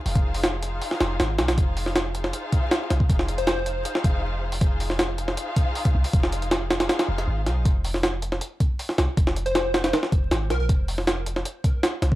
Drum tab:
HH |ox-ox-x-o-x-x-xx|x-o-x-x-x-x-x-x-|x-xxx-x-x-x----o|x-o-x-x-x-x-ox-o|
SD |----o----oo-o-oo|---oo--o----o-o-|-o--o----o------|---oo--o--------|
BD |-o--------------|o---------o----o|o---------o-----|o---------o--o--|

HH |x-xxx-xxxx-x--x-|x-o-x-x-x-x-o-x-|x-xxx-xxx-x-x-x-|x-o-x-x-x-x-x-x-|
SD |-o--o-oooo-o--o-|---oo--o-----oo-|-o--o-oooo--o-o-|---oo--o----o-o-|
BD |o---------------|o---------o-----|o---------o-----|o---------o----o|